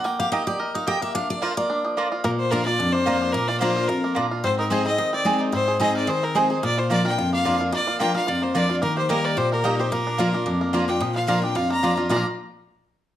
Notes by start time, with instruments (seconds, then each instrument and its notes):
Already playing: five-string banjo A#4
0.04 five-string banjo A#3, steel-string acoustic guitar G5
0.19 five-string banjo G4, steel-string acoustic guitar F5
0.32 mandolin A#3 G4 D#5 A#5, five-string banjo D#4, steel-string acoustic guitar D#5
0.47 five-string banjo G4, steel-string acoustic guitar D5
0.60 five-string banjo A#4, steel-string acoustic guitar D#5
0.74 five-string banjo D#4, steel-string acoustic guitar F5
0.87 mandolin A#3 G4 D#5 A#5, five-string banjo G4, steel-string acoustic guitar G5
1.01 five-string banjo A#3, steel-string acoustic guitar E5
1.15 five-string banjo D4, steel-string acoustic guitar F5
1.30 steel-string acoustic guitar D5
1.42 mandolin A#3 F4 D5 A#5, five-string banjo F4, steel-string acoustic guitar C5
1.57 five-string banjo A#3, steel-string acoustic guitar D5
1.70 five-string banjo D4
1.85 five-string banjo F3
1.97 mandolin A#3 F4 D5 A#5, five-string banjo A#3
2.12 five-string banjo F4
2.24 steel-string acoustic guitar A#2, five-string banjo A#3, fiddle A#4
2.39 fiddle C5
2.51 steel-string acoustic guitar F3 A#3 D4 F4, mandolin A#3 F4 D5 A#5, five-string banjo F4, fiddle A#4
2.65 five-string banjo A#3, steel-string acoustic guitar D4 F4, fiddle D5
2.79 steel-string acoustic guitar F2, five-string banjo D4
2.92 five-string banjo A#3, fiddle C5
3.06 steel-string acoustic guitar F3 A#3 D4 F4, mandolin A#3 F4 D5 A#5, five-string banjo F4
3.22 five-string banjo D4
3.32 steel-string acoustic guitar A#2, five-string banjo A#3, fiddle A#4
3.48 five-string banjo F4, fiddle D5
3.60 steel-string acoustic guitar F3 A#3 D4 F4, mandolin A#3 F4 D5 A#5, five-string banjo A#3, fiddle C5
3.76 five-string banjo A#4
3.88 steel-string acoustic guitar F2, five-string banjo F4, fiddle A#4
4.04 five-string banjo A#3
4.15 steel-string acoustic guitar A#2, mandolin A#3 F4 D5 A#5, five-string banjo D4
4.31 five-string banjo F4
4.44 steel-string acoustic guitar G#2, five-string banjo C4, fiddle C5
4.59 five-string banjo D#4, fiddle A#4
4.70 steel-string acoustic guitar G#3 C4 D#4 G#4, mandolin C4 G#4 D#5 G#5, five-string banjo G#4, fiddle C5
4.85 five-string banjo C4, steel-string acoustic guitar D#4 G#4, fiddle D#5
4.98 steel-string acoustic guitar D#3, five-string banjo D#4
5.13 five-string banjo C4, fiddle D5
5.25 steel-string acoustic guitar G#3 C4 D#4 G#4, mandolin C4 G#4 D#5 G#5, five-string banjo G#4
5.41 five-string banjo D#4
5.52 steel-string acoustic guitar G#2, five-string banjo C4, fiddle C5
5.68 five-string banjo G#4
5.80 steel-string acoustic guitar G#3 C4 D#4 G#4, mandolin C4 G#4 D#5 G#5, five-string banjo C4, fiddle D#5
5.95 five-string banjo A#4, fiddle D5
6.07 steel-string acoustic guitar D#3, five-string banjo G#4, fiddle C5
6.23 five-string banjo C4, fiddle A#4
6.35 steel-string acoustic guitar G#3 C4 D#4 G#4, mandolin C4 G#4 D#5 G#5, five-string banjo D#4, fiddle C5
6.50 steel-string acoustic guitar D#4 G#4, five-string banjo G#4
6.63 steel-string acoustic guitar A#2, five-string banjo A#3, fiddle D5
6.78 five-string banjo F4, fiddle C5
6.90 steel-string acoustic guitar F3 A#3 D4 F4, mandolin A#3 F4 D5 A#5, five-string banjo A#3, fiddle D5
7.05 steel-string acoustic guitar D4 F4, five-string banjo A#4, fiddle G5
7.18 steel-string acoustic guitar F2, five-string banjo F4
7.33 five-string banjo A#3, fiddle F5
7.44 steel-string acoustic guitar F3 A#3 D4 F4, mandolin A#3 F4 D5 A#5, five-string banjo D4
7.60 five-string banjo F4
7.72 steel-string acoustic guitar A#2, five-string banjo A#3, fiddle D5
7.87 five-string banjo F4
7.99 steel-string acoustic guitar F3 A#3 D4 F4, mandolin A#3 F4 D5 A#5, five-string banjo A#3, fiddle G5
8.14 steel-string acoustic guitar D4 F4, five-string banjo A#4, fiddle F5
8.27 steel-string acoustic guitar F2, five-string banjo F4, fiddle D5
8.42 five-string banjo A#3, fiddle C5
8.54 steel-string acoustic guitar F3 A#3 D4 F4, mandolin A#3 F4 D5 A#5, five-string banjo D4, fiddle D5
8.69 steel-string acoustic guitar D4 F4, five-string banjo F4
8.82 steel-string acoustic guitar D#3, five-string banjo A#3, fiddle A#4
8.97 five-string banjo G4, fiddle C5
9.09 steel-string acoustic guitar G3 A#3 D#4 G4, mandolin A#3 G4 D#5 A#5, five-string banjo A#3, fiddle A#4
9.24 five-string banjo A#4, fiddle D5
9.37 steel-string acoustic guitar A#2, five-string banjo G4, fiddle C5
9.52 five-string banjo A#3, fiddle A#4
9.64 steel-string acoustic guitar G3 A#3 D#4 G4, mandolin A#3 G4 D#5 A#5, five-string banjo D#4
9.79 steel-string acoustic guitar D#4 G4, five-string banjo G4, fiddle C5
9.92 steel-string acoustic guitar A#2, five-string banjo A#3, fiddle A#4
10.07 five-string banjo D4
10.18 steel-string acoustic guitar F3 A#3 D4 F4, mandolin A#3 F4 D5 A#5, five-string banjo F4
10.33 five-string banjo A#3, steel-string acoustic guitar D4 F4
10.46 steel-string acoustic guitar F2, five-string banjo D4
10.61 five-string banjo A#3
10.73 steel-string acoustic guitar F3 A#3 D4 F4, mandolin A#3 F4 D5 A#5, five-string banjo F4
10.88 five-string banjo D4, steel-string acoustic guitar D4 F4, fiddle G5
11.00 steel-string acoustic guitar A#2, five-string banjo F3
11.16 five-string banjo F4, fiddle F5
11.27 steel-string acoustic guitar F3 A#3 D4 F4, mandolin A#3 F4 D5 A#5, five-string banjo A#4, fiddle F5
11.42 steel-string acoustic guitar D4 F4, five-string banjo D4, fiddle G5
11.55 steel-string acoustic guitar F2, five-string banjo F4, fiddle F5
11.70 five-string banjo A#3, fiddle A#5
11.83 steel-string acoustic guitar F3 A#3 D4 F4, mandolin A#3 F4 D5 A#5, five-string banjo D4
11.97 steel-string acoustic guitar D4 F4, five-string banjo F4
12.09 steel-string acoustic guitar A#2 F3 A#3 D4 F4, mandolin A#3 F4 D5 A#5, five-string banjo A#3 D4, fiddle A#5
12.14 five-string banjo F4 A#4